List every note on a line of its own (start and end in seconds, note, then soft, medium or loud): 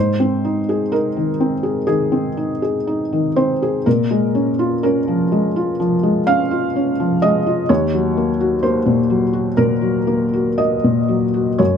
0.00 1.84 G#2 soft
0.00 0.91 C5 medium
0.20 0.58 C4 soft
0.45 0.82 D#4 soft
0.69 1.07 G#4 soft
0.92 1.30 D#4 soft
0.92 1.88 A#4 medium
1.17 1.54 D#3 soft
1.40 1.78 C4 soft
1.63 1.85 G#4 soft
1.87 2.27 D#3 soft
1.87 2.61 G#4 medium
2.12 2.51 C4 soft
2.37 2.77 D#4 soft
2.62 3.02 G#4 soft
2.87 3.27 D#4 soft
3.13 3.52 D#3 soft
3.36 3.76 C4 soft
3.36 3.86 C5 medium
3.62 3.86 G#4 soft
3.86 5.76 A#2 soft
3.86 4.82 A#4 medium
4.11 4.49 G#3 soft
4.35 4.73 C#4 soft
4.59 4.97 F4 soft
4.83 5.22 C#4 soft
4.83 5.79 A#4 medium
5.08 5.46 F3 soft
5.32 5.70 G#3 soft
5.56 5.94 F4 soft
5.80 6.18 F3 soft
6.03 6.42 G#3 soft
6.27 6.65 C#4 soft
6.27 7.22 F5 medium
6.51 6.89 F4 soft
6.76 7.14 C#4 soft
7.00 7.37 F3 soft
7.22 7.60 G#3 soft
7.22 7.69 D#5 medium
7.46 7.70 F4 soft
7.69 9.53 D#2 medium
7.69 8.62 C#5 medium
7.94 8.30 F#3 soft
8.17 8.53 A#3 soft
8.40 8.77 F#4 soft
8.63 9.00 A#3 soft
8.63 9.57 C5 medium
8.86 9.23 A#2 soft
9.10 9.47 F#3 soft
9.33 9.72 F#4 soft
9.57 9.97 A#2 soft
9.57 10.59 A#4 medium
9.82 10.23 F#3 soft
10.07 10.49 A#3 soft
10.33 10.74 F#4 soft
10.58 10.99 A#3 soft
10.58 11.59 D#5 medium
10.84 11.24 A#2 soft
11.09 11.49 F#3 soft
11.34 11.59 F#4 soft
11.58 11.77 F#2 soft
11.58 11.77 C#5 medium